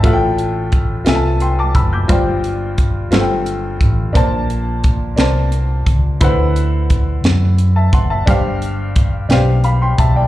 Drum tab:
HH |xxxxxx|xxxxxx|xxxxxx|xxxxxx|
SD |---o--|---o--|---o--|---o--|
BD |o-o--o|o-o--o|o-o--o|o-o--o|

HH |xxxxxx|
SD |---o--|
BD |o-o--o|